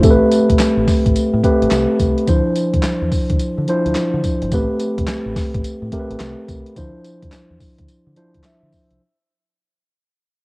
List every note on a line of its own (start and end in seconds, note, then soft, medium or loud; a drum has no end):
0.03 0.17 A1 loud
0.03 0.75 A3 medium
0.03 0.75 C4 medium
0.03 0.76 G4 medium
0.03 0.12 A4 medium
0.03 kick loud
0.03 closed hi-hat medium
0.03 tambourine medium
0.11 0.79 B4 medium
0.31 closed hi-hat medium
0.31 tambourine medium
0.50 0.57 C2 medium
0.50 kick medium
0.50 closed hi-hat medium
0.59 muted fingered electric bass stroke soft
0.59 snare loud
0.59 clap loud
0.59 closed hi-hat medium
0.59 tambourine loud
0.77 0.85 A1 medium
0.88 kick loud
0.88 snare medium
0.88 open hi-hat medium
0.88 tambourine medium
1.06 1.13 A1 medium
1.06 kick medium
1.06 closed hi-hat medium
1.16 muted fingered electric bass stroke medium
1.16 closed hi-hat medium
1.16 tambourine medium
1.34 1.41 A2 loud
1.44 1.96 A3 medium
1.44 1.96 C4 medium
1.44 1.97 G4 medium
1.44 1.97 B4 loud
1.44 kick loud
1.44 closed hi-hat medium
1.62 1.69 A1 medium
1.62 closed hi-hat medium
1.71 1.85 C2 loud
1.71 snare loud
1.71 clap medium
1.71 closed hi-hat medium
1.71 tambourine loud
1.99 2.13 C2 medium
1.99 kick medium
1.99 closed hi-hat medium
1.99 tambourine medium
2.18 closed hi-hat medium
2.27 2.41 D2 loud
2.27 3.00 F3 medium
2.27 3.00 D4 medium
2.27 3.00 E4 medium
2.27 3.00 C5 medium
2.27 kick loud
2.27 closed hi-hat medium
2.27 tambourine medium
2.56 closed hi-hat medium
2.56 tambourine medium
2.74 2.81 D2 medium
2.74 kick medium
2.74 closed hi-hat medium
2.83 muted fingered electric bass stroke soft
2.83 snare loud
2.83 clap loud
2.83 closed hi-hat medium
2.83 tambourine medium
3.02 3.09 E2 medium
3.12 kick loud
3.12 open hi-hat medium
3.12 tambourine medium
3.30 3.37 D2 medium
3.30 kick medium
3.30 closed hi-hat medium
3.39 muted fingered electric bass stroke medium
3.39 closed hi-hat medium
3.39 tambourine medium
3.58 3.65 D3 loud
3.68 4.21 F3 medium
3.68 4.21 D4 medium
3.68 4.21 E4 medium
3.68 4.21 C5 loud
3.68 closed hi-hat medium
3.86 3.93 D2 medium
3.86 closed hi-hat medium
3.95 snare loud
3.95 clap medium
3.95 closed hi-hat medium
3.95 tambourine medium
4.14 4.21 D3 loud
4.24 kick medium
4.24 closed hi-hat medium
4.24 tambourine medium
4.42 4.49 G1 medium
4.42 closed hi-hat soft
4.52 4.66 A1 loud
4.52 5.24 A3 medium
4.52 5.25 C4 medium
4.52 5.25 G4 medium
4.52 5.25 B4 medium
4.52 kick loud
4.52 closed hi-hat medium
4.52 tambourine medium
4.80 closed hi-hat medium
4.80 tambourine medium
4.98 5.06 C2 medium
4.98 kick medium
4.98 closed hi-hat medium
5.07 snare loud
5.07 clap loud
5.07 closed hi-hat medium
5.07 tambourine medium
5.26 5.33 A1 medium
5.36 kick medium
5.36 snare medium
5.36 open hi-hat medium
5.36 tambourine medium
5.54 5.62 A1 medium
5.54 kick medium
5.54 closed hi-hat medium
5.64 muted fingered electric bass stroke soft
5.64 closed hi-hat medium
5.64 tambourine medium
5.82 5.90 A2 medium
5.92 6.45 A3 medium
5.92 6.45 C4 medium
5.92 6.45 G4 medium
5.92 6.01 A#4 medium
5.92 kick medium
5.92 closed hi-hat medium
6.00 6.49 B4 medium
6.10 6.18 A1 loud
6.10 closed hi-hat medium
6.20 6.34 C2 medium
6.20 snare loud
6.20 clap medium
6.20 closed hi-hat medium
6.20 tambourine medium
6.48 6.62 C2 medium
6.48 kick medium
6.48 closed hi-hat medium
6.48 tambourine medium
6.66 closed hi-hat soft
6.76 6.90 D2 loud
6.76 7.48 F3 medium
6.76 7.49 D4 medium
6.76 7.49 E4 medium
6.76 7.49 C5 medium
6.76 kick loud
6.76 closed hi-hat medium
6.76 tambourine medium
7.04 closed hi-hat medium
7.04 tambourine medium
7.22 7.30 D2 medium
7.22 kick loud
7.22 closed hi-hat medium
7.32 snare loud
7.32 clap loud
7.32 closed hi-hat medium
7.32 tambourine loud
7.50 7.58 E2 medium
7.60 kick loud
7.60 open hi-hat medium
7.60 tambourine medium
7.78 7.86 D2 medium
7.78 kick medium
7.78 closed hi-hat medium
7.88 closed hi-hat medium
7.88 tambourine medium
8.07 8.14 D3 loud
8.16 8.69 F3 medium
8.16 8.69 D4 medium
8.16 8.70 E4 medium
8.16 8.70 C5 medium
8.16 closed hi-hat medium
8.34 8.42 D2 medium
8.34 kick medium
8.34 closed hi-hat medium
8.43 8.97 E5 medium
8.43 snare loud
8.43 clap loud
8.43 closed hi-hat medium
8.43 tambourine loud
8.63 8.70 D3 loud
8.72 kick medium
8.72 open hi-hat medium
8.72 tambourine medium
8.90 8.98 C2 medium
8.90 closed hi-hat soft